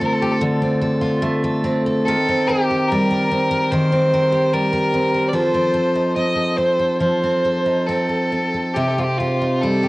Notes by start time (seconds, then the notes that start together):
Already playing: D3 A3 F4 A4
0.01 C4
0.06 A#4
0.13 A4
0.22 G4 A4
0.31 A4
0.41 D3 A4
0.62 C4
0.81 A4
1.01 F4
1.22 A3
1.44 A4
1.64 C4
1.86 A4
2.06 D#3 A4
2.29 C4
2.47 G4 A#4
2.71 G4
2.88 G3 A#4
3.11 A#4
3.31 C4
3.51 A#4
3.72 D#3 A#4 C5
3.92 C4
4.14 A#4
4.32 G4
4.53 G3 A#4
4.73 A#4
4.94 C4
5.14 A#4
5.29 D5
5.33 F3 A4 C5
5.54 C4
5.74 A4
5.95 D#4
6.16 C4 D#5
6.36 A4
6.58 C4 C5
6.79 A4
7.00 F3 A4 C5
7.23 C4
7.45 A4
7.66 D#4
7.87 C4 A4
8.09 A4
8.32 C4
8.54 A4
8.74 C3 G4
8.87 G4 A4
8.98 C4 F4
9.03 G4
9.18 F4 G4
9.42 D#4
9.61 G3 A4
9.83 G4